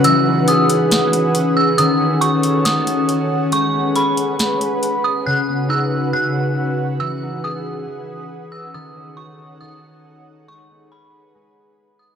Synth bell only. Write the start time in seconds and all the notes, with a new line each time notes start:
0.04 E6
0.48 D#6
1.57 E6
1.78 D#6
2.21 C#6
2.65 D#6
3.53 C#6
3.96 B5
5.04 D#6
5.26 F#6
5.70 E6
6.13 F#6
7.00 E6
7.44 D#6
8.52 E6
8.74 D#6
9.17 C#6
9.61 D#6
10.48 C#6
10.92 B5
11.99 D#6